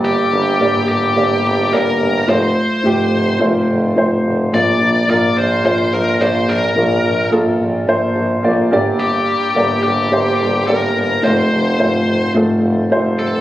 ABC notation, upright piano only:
X:1
M:4/4
L:1/8
Q:1/4=107
K:Bb
V:1 name="Upright piano"
[B,Gd] z [B,Gd]2 [B,Gd]2 [B,Gd]2 | [A,Fc]2 [A,FG]2 [A,Fc]2 [A,Fc]2 | [B,Fd]2 [B,FB]2 [B,Fc]2 [B,Fd]2 | [B,FB]2 [B,FA]2 [B,Fc]2 [B,Fd] [B,Gd]- |
[B,Gd] z [B,Gd]2 [B,Gc]2 [B,Gd]2 | [A,Fc]2 [A,Fc]2 [A,FA]2 [G,A,Fc]2 |]
V:2 name="Upright piano" clef=bass
G,,2 z6 | z8 | B,,3 z4 z | B,,3 z4 G,,- |
G,,2 z6 | z8 |]